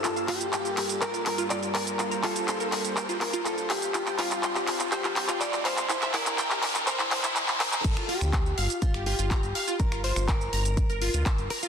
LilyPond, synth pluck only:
\new Staff \with { instrumentName = "Synth pluck" } { \time 4/4 \key g \dorian \tempo 4 = 123 f'16 f''16 f'16 r16 g''16 g'16 r8 bes'16 f'16 r16 f'16 r8 d''16 r16 | f'16 bes''16 f'16 r16 c'''16 bes'16 r8 c''16 f'16 r16 f'16 r8 f''16 r16 | f'16 g''16 f'16 r16 c'''16 g'16 r8 c''16 f'16 r16 f'16 r8 f''16 r16 | e'16 e''16 e'16 r16 g''16 g'16 r8 bes'16 e'16 r16 e'16 r8 c''16 r16 |
r16 f'16 f'16 r8. f''16 r8 g'16 f'16 f'16 bes''16 r16 f''16 f'16 | r16 f'16 f'16 r8. bes''16 r8 bes'16 f'16 f'16 e'''16 r16 bes''16 f'16 | }